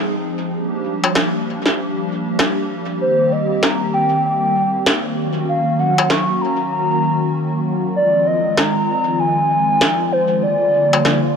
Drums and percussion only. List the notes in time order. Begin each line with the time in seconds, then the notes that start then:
1.04 struck metal
1.15 snare
1.66 snare
2.39 snare
3.63 snare
4.86 snare
5.98 struck metal
6.10 snare
8.57 snare
9.81 snare
10.93 struck metal
11.05 snare